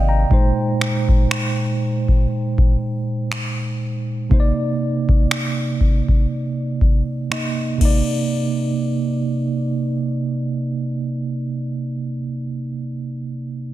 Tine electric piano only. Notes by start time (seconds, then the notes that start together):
Already playing: C3 A#3 D#4 D5 D#5 F5 G5
0.09 G5 A#5
0.29 A#2 G#3 D#4
0.34 C5
4.29 C3 A#3 D#4 C5
4.40 D5
7.30 C3 A#3 D#4 D#5
7.77 C3 A#3
7.83 D#4 D5